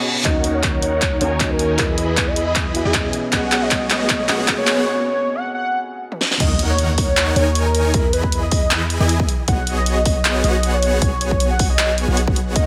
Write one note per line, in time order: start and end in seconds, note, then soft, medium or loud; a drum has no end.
0.00 0.27 B2 medium
0.00 0.27 B3 medium
0.00 0.25 C#4 medium
0.00 0.27 G#4 medium
0.00 0.27 D#5 medium
0.00 0.27 F#5 medium
0.00 reverse cymbal medium
0.23 1.19 D#2 medium
0.23 1.18 D#3 medium
0.23 1.19 D#3 medium
0.23 1.18 A#3 medium
0.23 1.19 C#4 medium
0.23 1.19 D#4 medium
0.23 1.19 F#4 medium
0.23 1.19 A#4 medium
0.23 1.19 C#5 medium
0.23 0.51 D#5 loud
0.23 1.19 F#5 medium
0.23 kick medium
0.23 clap soft
0.23 closed hi-hat medium
0.23 riser medium
0.27 1.20 D#5 medium
0.44 closed hi-hat medium
0.54 0.80 C#5 medium
0.63 kick medium
0.63 clap soft
0.63 closed hi-hat medium
0.82 1.17 C#5 medium
0.82 closed hi-hat medium
1.02 kick medium
1.02 clap soft
1.02 closed hi-hat medium
1.20 1.77 D#2 medium
1.20 1.38 D#3 medium
1.20 1.77 D#3 medium
1.20 1.38 A#3 medium
1.20 1.38 C#4 medium
1.20 1.77 D#4 medium
1.20 1.38 F#4 medium
1.20 1.77 A#4 medium
1.20 1.52 C#5 medium
1.20 1.77 C#5 medium
1.20 1.39 F#5 medium
1.20 1.77 G#5 loud
1.20 closed hi-hat medium
1.39 1.76 D#3 medium
1.39 1.76 A#3 medium
1.39 1.77 C#4 medium
1.39 1.77 F#4 medium
1.39 1.77 D#5 loud
1.39 kick medium
1.39 clap medium
1.39 closed hi-hat medium
1.50 1.76 A#4 medium
1.59 closed hi-hat medium
1.77 2.83 E2 medium
1.77 2.72 E3 medium
1.77 2.83 E3 medium
1.77 2.72 B3 medium
1.77 2.83 E4 medium
1.77 2.73 F#4 medium
1.77 2.83 G#4 medium
1.77 2.73 G#4 medium
1.77 1.96 A#4 medium
1.77 2.83 D#5 medium
1.77 2.83 B5 medium
1.77 kick medium
1.77 clap medium
1.77 closed hi-hat medium
1.81 2.74 D#5 medium
1.98 2.29 B4 medium
1.98 closed hi-hat medium
2.17 kick medium
2.17 clap medium
2.17 closed hi-hat medium
2.27 2.44 D#5 medium
2.36 closed hi-hat medium
2.46 2.72 D#5 loud
2.55 kick loud
2.55 clap medium
2.55 closed hi-hat medium
2.74 2.91 E3 medium
2.74 2.92 B3 medium
2.74 2.92 F#4 medium
2.74 2.92 G#4 medium
2.74 2.92 E5 medium
2.74 closed hi-hat medium
2.85 3.10 E2 loud
2.85 3.12 E3 medium
2.85 3.12 E4 medium
2.85 3.12 G#4 medium
2.85 3.12 D#5 medium
2.85 3.12 G#5 loud
2.93 3.29 B2 medium
2.93 3.30 B3 medium
2.93 3.30 C#4 medium
2.93 3.31 G#4 medium
2.93 3.31 D#5 loud
2.93 kick medium
2.93 clap medium
2.93 closed hi-hat medium
3.13 closed hi-hat medium
3.30 4.27 B1 loud
3.30 4.25 B2 medium
3.30 4.26 B3 medium
3.30 4.27 B3 medium
3.30 4.26 C#4 medium
3.30 4.27 F#4 medium
3.30 4.27 G#4 medium
3.30 4.27 C#5 medium
3.30 4.27 D#5 loud
3.30 4.27 D#5 medium
3.30 3.63 F#5 loud
3.30 kick medium
3.30 clap medium
3.30 closed hi-hat medium
3.52 clap medium
3.52 closed hi-hat medium
3.62 3.87 D#5 medium
3.71 kick medium
3.71 clap medium
3.71 closed hi-hat medium
3.90 4.25 D#5 loud
3.90 clap medium
3.90 closed hi-hat medium
4.09 kick loud
4.09 clap medium
4.09 closed hi-hat medium
4.28 4.85 B1 loud
4.28 4.45 B2 medium
4.28 4.45 B3 medium
4.28 4.84 B3 loud
4.28 4.46 C#4 medium
4.28 4.84 F#4 medium
4.28 4.84 G#4 medium
4.28 4.46 G#4 medium
4.28 4.84 C#5 medium
4.28 4.55 D#5 loud
4.28 4.84 F#5 loud
4.28 4.46 F#5 medium
4.28 clap medium
4.28 closed hi-hat medium
4.47 4.84 B2 medium
4.47 4.84 B3 medium
4.47 4.84 C#4 medium
4.47 4.84 G#4 medium
4.47 4.85 D#5 loud
4.47 kick medium
4.47 clap medium
4.47 closed hi-hat medium
4.58 4.84 C#5 medium
4.67 clap medium
4.67 closed hi-hat medium
4.86 5.04 C#5 medium
5.06 5.37 C#5 medium
5.35 5.52 F#5 medium
5.54 5.80 F#5 medium
6.12 high tom medium
6.21 snare medium
6.31 snare medium
6.40 7.35 D#2 loud
6.40 7.34 D#3 medium
6.40 7.34 D#4 medium
6.40 7.34 A#4 medium
6.40 7.34 C#5 medium
6.40 6.67 D#5 loud
6.40 7.34 F#5 loud
6.40 kick loud
6.40 closed hi-hat medium
6.40 crash loud
6.40 impact medium
6.59 closed hi-hat medium
6.70 6.95 C#5 medium
6.79 closed hi-hat medium
6.98 7.33 C#5 loud
6.98 kick loud
6.98 open hi-hat medium
7.17 clap loud
7.17 closed hi-hat medium
7.36 7.96 D#2 medium
7.36 7.92 D#3 loud
7.36 7.92 D#4 medium
7.36 7.92 A#4 medium
7.36 7.92 C#5 medium
7.36 7.63 C#5 loud
7.36 7.92 G#5 loud
7.36 closed hi-hat medium
7.55 closed hi-hat medium
7.66 7.91 A#4 loud
7.75 closed hi-hat medium
7.94 8.98 E2 loud
7.94 8.98 E3 medium
7.94 8.98 E4 medium
7.94 8.98 G#4 medium
7.94 8.11 A#4 medium
7.94 8.98 D#5 medium
7.94 8.98 B5 medium
7.94 kick loud
7.94 closed hi-hat medium
8.13 8.40 B4 medium
8.13 closed hi-hat medium
8.23 kick medium
8.32 closed hi-hat medium
8.43 8.60 D#5 medium
8.51 kick loud
8.51 open hi-hat medium
8.62 8.87 D#5 loud
8.71 clap loud
8.71 closed hi-hat medium
8.90 closed hi-hat medium
9.00 9.26 E2 loud
9.00 9.28 E3 loud
9.00 9.28 E4 medium
9.00 9.28 G#4 medium
9.00 9.28 D#5 medium
9.00 9.28 G#5 loud
9.09 closed hi-hat medium
9.20 kick loud
9.29 closed hi-hat medium
9.48 10.42 B1 loud
9.48 10.42 B3 medium
9.48 10.42 F#4 medium
9.48 10.42 G#4 medium
9.48 10.42 C#5 medium
9.48 10.42 D#5 loud
9.48 9.74 F#5 loud
9.48 kick loud
9.48 closed hi-hat medium
9.67 closed hi-hat medium
9.77 10.03 D#5 loud
9.86 closed hi-hat medium
10.05 10.40 D#5 loud
10.05 kick loud
10.05 open hi-hat medium
10.25 clap loud
10.25 closed hi-hat medium
10.44 11.00 B1 loud
10.44 11.00 B3 loud
10.44 11.00 F#4 medium
10.44 11.00 G#4 medium
10.44 11.00 C#5 medium
10.44 10.75 D#5 loud
10.44 11.00 F#5 loud
10.44 closed hi-hat medium
10.63 closed hi-hat medium
10.73 10.99 C#5 loud
10.83 closed hi-hat medium
11.02 12.06 B1 loud
11.02 12.06 B3 medium
11.02 12.06 F#4 medium
11.02 12.06 G#4 medium
11.02 11.19 C#5 medium
11.02 12.06 C#5 medium
11.02 12.06 G#5 medium
11.02 kick loud
11.02 closed hi-hat medium
11.21 11.47 C#5 medium
11.21 closed hi-hat medium
11.31 kick medium
11.40 closed hi-hat medium
11.51 11.68 F#5 medium
11.59 kick loud
11.59 open hi-hat medium
11.70 11.95 D#5 loud
11.79 clap loud
11.79 closed hi-hat medium
11.98 closed hi-hat medium
12.08 12.57 B1 loud
12.08 12.54 B3 medium
12.08 12.54 F#4 medium
12.08 12.54 G#4 medium
12.08 12.54 C#5 medium
12.08 12.54 F#5 loud
12.17 closed hi-hat medium
12.28 kick loud
12.36 closed hi-hat medium
12.55 12.66 D#2 loud
12.55 12.66 D#3 medium
12.55 12.66 D#4 medium
12.55 12.66 A#4 medium
12.55 12.66 C#5 medium
12.55 12.66 D#5 loud
12.55 12.66 F#5 loud
12.55 kick loud
12.55 closed hi-hat medium